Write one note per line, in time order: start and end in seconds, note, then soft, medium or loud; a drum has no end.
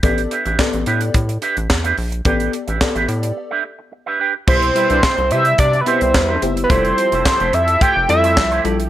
0.03 0.27 A1 loud
0.03 0.33 B3 medium
0.03 0.20 D4 medium
0.03 0.33 G4 medium
0.03 0.21 G4 medium
0.03 0.33 A4 medium
0.03 0.21 B4 medium
0.03 0.33 D5 medium
0.03 0.21 E5 medium
0.03 kick loud
0.03 closed hi-hat medium
0.18 closed hi-hat medium
0.31 0.45 D4 medium
0.31 0.45 G4 medium
0.31 0.45 B4 medium
0.31 0.44 E5 medium
0.31 closed hi-hat medium
0.45 0.57 A1 medium
0.45 0.59 D4 soft
0.45 0.58 G4 medium
0.45 0.58 B4 medium
0.45 0.58 E5 medium
0.45 closed hi-hat soft
0.59 1.19 B3 medium
0.59 1.19 G4 medium
0.59 1.19 A4 medium
0.59 1.19 D5 medium
0.59 kick loud
0.59 snare loud
0.59 clap medium
0.73 0.85 A1 medium
0.73 muted clean electric guitar stroke soft
0.73 closed hi-hat medium
0.86 1.10 A2 loud
0.86 1.03 D4 medium
0.86 1.01 G4 medium
0.86 1.01 B4 medium
0.86 1.00 E5 medium
0.86 closed hi-hat medium
1.01 muted clean electric guitar stroke soft
1.01 closed hi-hat medium
1.14 1.38 A2 loud
1.14 muted clean electric guitar stroke soft
1.14 kick loud
1.14 closed hi-hat medium
1.29 muted clean electric guitar stroke soft
1.29 closed hi-hat medium
1.41 1.59 D4 medium
1.41 1.57 G4 medium
1.41 1.56 B4 medium
1.41 1.55 E5 medium
1.41 closed hi-hat medium
1.57 1.68 A1 medium
1.57 muted clean electric guitar stroke soft
1.57 closed hi-hat medium
1.69 1.94 E2 loud
1.69 muted clean electric guitar stroke soft
1.69 kick loud
1.69 snare loud
1.69 clap medium
1.84 1.96 D4 medium
1.84 1.97 G4 medium
1.84 1.97 B4 medium
1.84 1.97 E5 medium
1.84 closed hi-hat medium
1.97 2.21 A#1 medium
1.97 muted clean electric guitar stroke soft
1.97 open hi-hat medium
2.12 muted clean electric guitar stroke soft
2.12 closed hi-hat medium
2.25 2.49 A1 loud
2.25 2.55 B3 medium
2.25 2.51 D4 medium
2.25 2.55 G4 medium
2.25 2.51 G4 medium
2.25 2.56 A4 medium
2.25 2.52 B4 medium
2.25 2.56 D5 medium
2.25 2.52 G5 medium
2.25 kick loud
2.25 closed hi-hat medium
2.40 closed hi-hat medium
2.53 muted clean electric guitar stroke soft
2.53 closed hi-hat medium
2.67 2.79 A1 medium
2.67 2.79 D4 soft
2.67 2.80 G4 medium
2.67 2.80 B4 medium
2.67 2.80 E5 medium
2.67 closed hi-hat soft
2.81 3.41 B3 medium
2.81 3.41 G4 medium
2.81 3.41 A4 medium
2.81 3.41 D5 medium
2.81 muted clean electric guitar stroke soft
2.81 kick loud
2.81 snare loud
2.81 clap medium
2.95 3.07 A1 loud
2.95 3.07 D4 medium
2.95 3.08 G4 medium
2.95 3.08 B4 medium
2.95 3.08 E5 medium
2.95 closed hi-hat medium
3.08 3.32 A2 loud
3.08 muted clean electric guitar stroke soft
3.08 closed hi-hat medium
3.23 muted clean electric guitar stroke medium
3.23 closed hi-hat medium
3.36 muted clean electric guitar stroke soft
3.51 3.63 D4 medium
3.51 3.63 G4 medium
3.51 3.64 B4 medium
3.51 3.64 E5 medium
3.64 muted clean electric guitar stroke soft
3.79 muted clean electric guitar stroke soft
3.92 muted clean electric guitar stroke soft
4.06 4.18 D4 medium
4.06 4.19 G4 medium
4.06 4.19 B4 medium
4.06 4.21 E5 medium
4.19 4.33 D4 medium
4.19 4.34 G4 medium
4.19 4.34 B4 medium
4.19 4.34 G5 medium
4.34 muted clean electric guitar stroke soft
4.47 4.71 C2 loud
4.47 6.68 B2 medium
4.47 5.07 B2 medium
4.47 6.68 G3 medium
4.47 4.65 C4 medium
4.47 5.08 E4 medium
4.47 4.65 G4 medium
4.47 5.08 G4 medium
4.47 4.65 B4 medium
4.47 5.08 C5 medium
4.47 5.33 C5 loud
4.47 8.88 E5 medium
4.47 4.65 E5 medium
4.47 kick loud
4.47 crash loud
4.62 closed hi-hat soft
4.75 4.87 G3 medium
4.75 4.89 C4 medium
4.75 4.87 E4 medium
4.75 4.89 G4 medium
4.75 4.87 B4 medium
4.75 4.89 B4 medium
4.75 4.88 E5 medium
4.75 closed hi-hat medium
4.89 5.01 C2 medium
4.89 5.03 C4 medium
4.89 5.01 D4 medium
4.89 5.03 G4 medium
4.89 5.01 B4 medium
4.89 5.02 B4 medium
4.89 5.01 D5 medium
4.89 5.02 E5 medium
4.89 closed hi-hat medium
5.03 kick loud
5.03 snare loud
5.03 clap medium
5.18 5.32 C2 loud
5.18 muted clean electric guitar stroke soft
5.18 closed hi-hat soft
5.30 5.54 C3 loud
5.30 5.43 G3 medium
5.30 5.48 C4 medium
5.30 5.43 E4 medium
5.30 5.45 G4 medium
5.30 5.45 B4 medium
5.30 5.43 C5 loud
5.30 5.59 E5 loud
5.30 5.44 E5 medium
5.30 closed hi-hat medium
5.45 muted clean electric guitar stroke medium
5.45 closed hi-hat medium
5.58 5.82 C3 loud
5.58 5.82 D5 loud
5.58 muted clean electric guitar stroke soft
5.58 kick loud
5.58 closed hi-hat medium
5.73 muted clean electric guitar stroke soft
5.73 closed hi-hat soft
5.81 5.89 B4 medium
5.86 6.16 B3 medium
5.86 6.04 C4 medium
5.86 6.17 E4 medium
5.86 6.01 G4 medium
5.86 6.17 G4 medium
5.86 6.17 B4 medium
5.86 6.01 B4 medium
5.86 6.43 C5 medium
5.86 6.00 E5 medium
5.86 closed hi-hat medium
6.01 6.16 C2 medium
6.01 muted clean electric guitar stroke soft
6.01 closed hi-hat medium
6.14 6.38 E2 medium
6.14 6.37 G3 medium
6.14 6.37 E4 medium
6.14 6.37 B4 medium
6.14 kick loud
6.14 snare loud
6.14 clap medium
6.28 6.41 C4 medium
6.28 6.41 G4 medium
6.28 6.42 B4 medium
6.28 6.42 E5 medium
6.42 6.66 F#1 medium
6.42 6.58 B3 medium
6.42 6.58 E4 medium
6.42 6.58 G4 medium
6.42 6.58 C5 medium
6.42 muted clean electric guitar stroke soft
6.42 closed hi-hat medium
6.57 muted clean electric guitar stroke soft
6.57 closed hi-hat medium
6.64 6.72 B4 medium
6.70 6.93 F1 loud
6.70 8.89 F3 medium
6.70 7.30 G3 medium
6.70 6.96 A3 medium
6.70 7.30 E4 medium
6.70 6.96 E4 medium
6.70 7.30 F4 medium
6.70 8.89 G4 medium
6.70 6.96 G4 medium
6.70 8.89 A4 medium
6.70 7.30 A4 medium
6.70 7.56 C5 medium
6.70 6.96 D5 medium
6.70 kick loud
6.70 closed hi-hat medium
6.85 closed hi-hat soft
6.97 muted clean electric guitar stroke soft
6.97 closed hi-hat medium
7.12 7.23 F1 loud
7.12 7.24 A3 medium
7.12 7.25 E4 medium
7.12 7.25 G4 medium
7.12 7.24 C5 medium
7.12 closed hi-hat medium
7.25 kick loud
7.25 snare loud
7.25 clap medium
7.40 7.51 F1 loud
7.40 7.52 A3 medium
7.40 7.52 E4 medium
7.40 7.53 G4 medium
7.40 7.53 C5 medium
7.40 closed hi-hat soft
7.53 7.77 F2 loud
7.53 7.83 E5 loud
7.53 muted clean electric guitar stroke soft
7.53 closed hi-hat medium
7.68 muted clean electric guitar stroke soft
7.68 closed hi-hat medium
7.81 7.98 A3 medium
7.81 7.96 E4 medium
7.81 7.95 G4 medium
7.81 7.95 C5 loud
7.81 8.09 G5 loud
7.81 kick loud
7.81 closed hi-hat medium
7.96 8.07 F1 medium
7.96 muted clean electric guitar stroke medium
8.08 8.39 F2 loud
8.08 8.39 G3 medium
8.08 8.39 E4 medium
8.08 8.39 F4 medium
8.08 8.39 A4 medium
8.08 8.61 E5 loud
8.08 muted clean electric guitar stroke soft
8.08 closed hi-hat medium
8.23 8.35 A3 medium
8.23 8.36 E4 medium
8.23 8.36 G4 medium
8.23 8.36 C5 medium
8.23 closed hi-hat medium
8.37 8.60 C2 medium
8.37 kick loud
8.37 snare loud
8.37 clap medium
8.51 8.63 A3 medium
8.51 8.63 E4 medium
8.51 8.64 G4 medium
8.51 8.65 C5 medium
8.51 closed hi-hat soft
8.64 8.88 A#1 medium
8.64 8.80 G3 medium
8.64 8.78 A3 medium
8.64 8.78 E4 medium
8.64 8.80 E4 medium
8.64 8.80 F4 medium
8.64 8.78 G4 medium
8.64 8.80 A4 medium
8.64 8.79 D5 medium
8.64 closed hi-hat medium
8.79 muted clean electric guitar stroke soft
8.79 closed hi-hat medium